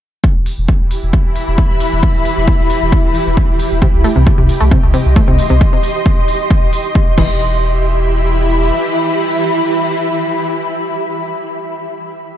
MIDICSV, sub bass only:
0, 0, Header, 1, 2, 480
1, 0, Start_track
1, 0, Key_signature, 1, "minor"
1, 0, Tempo, 447761
1, 255, Time_signature, 4, 2, 24, 8
1, 13263, End_track
2, 0, Start_track
2, 0, Title_t, "Sub bass"
2, 0, Program_c, 0, 38
2, 378, Note_on_c, 0, 28, 74
2, 493, Note_off_c, 0, 28, 0
2, 618, Note_on_c, 0, 28, 83
2, 733, Note_off_c, 0, 28, 0
2, 858, Note_on_c, 0, 28, 74
2, 973, Note_off_c, 0, 28, 0
2, 1098, Note_on_c, 0, 28, 81
2, 1213, Note_off_c, 0, 28, 0
2, 1338, Note_on_c, 0, 28, 77
2, 1453, Note_off_c, 0, 28, 0
2, 1578, Note_on_c, 0, 28, 85
2, 1693, Note_off_c, 0, 28, 0
2, 1818, Note_on_c, 0, 28, 76
2, 1933, Note_off_c, 0, 28, 0
2, 2058, Note_on_c, 0, 28, 82
2, 2173, Note_off_c, 0, 28, 0
2, 2298, Note_on_c, 0, 28, 75
2, 2413, Note_off_c, 0, 28, 0
2, 2538, Note_on_c, 0, 28, 88
2, 2653, Note_off_c, 0, 28, 0
2, 2777, Note_on_c, 0, 28, 78
2, 2893, Note_off_c, 0, 28, 0
2, 3018, Note_on_c, 0, 28, 78
2, 3133, Note_off_c, 0, 28, 0
2, 3258, Note_on_c, 0, 28, 78
2, 3373, Note_off_c, 0, 28, 0
2, 3497, Note_on_c, 0, 28, 87
2, 3613, Note_off_c, 0, 28, 0
2, 3738, Note_on_c, 0, 28, 80
2, 3853, Note_off_c, 0, 28, 0
2, 3977, Note_on_c, 0, 28, 83
2, 4093, Note_off_c, 0, 28, 0
2, 4217, Note_on_c, 0, 36, 77
2, 4333, Note_off_c, 0, 36, 0
2, 4457, Note_on_c, 0, 36, 86
2, 4573, Note_off_c, 0, 36, 0
2, 4698, Note_on_c, 0, 36, 76
2, 4813, Note_off_c, 0, 36, 0
2, 4937, Note_on_c, 0, 36, 83
2, 5053, Note_off_c, 0, 36, 0
2, 5176, Note_on_c, 0, 36, 76
2, 5292, Note_off_c, 0, 36, 0
2, 5416, Note_on_c, 0, 36, 84
2, 5532, Note_off_c, 0, 36, 0
2, 5657, Note_on_c, 0, 36, 75
2, 5773, Note_off_c, 0, 36, 0
2, 5897, Note_on_c, 0, 36, 81
2, 6013, Note_off_c, 0, 36, 0
2, 7694, Note_on_c, 0, 28, 98
2, 9332, Note_off_c, 0, 28, 0
2, 13263, End_track
0, 0, End_of_file